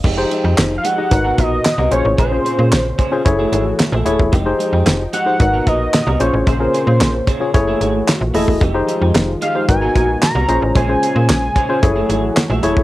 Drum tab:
CC |x---------------|----------------|----------------|----------------|
HH |--x-x-x-x-x-x-x-|x-x-x-x-x-x-x-x-|x-x-x-x-x-x-x-x-|x-x-x-x-x-x-x-o-|
CP |----x-------x---|----x-------x---|----x-------x---|----x-------x---|
SD |----o-------o---|----o-------o---|----o-------o---|----o-------o---|
BD |o-------o-o-----|o-----o-o------o|o-------o-o-----|o-----o-o------o|

CC |----------------|----------------|
HH |x-x-x-x-x-x-x-x-|x-x-x-x-x-x-x-x-|
CP |----x-------x---|----x-------x---|
SD |----o-------o---|----o-------o---|
BD |o-------o-o-----|o-----o-o------o|